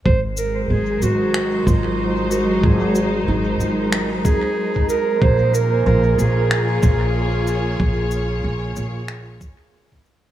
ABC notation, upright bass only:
X:1
M:4/4
L:1/8
Q:"Swing 16ths" 1/4=93
K:Abmix
V:1 name="Upright bass" clef=bass
A,,,2 A,,, A,,,2 A,,,3 | A,,,2 A,,, A,,,2 z3 | B,,,2 B,,, B,,,2 B,,,3 | B,,,2 B,,, B,,,2 z3 |]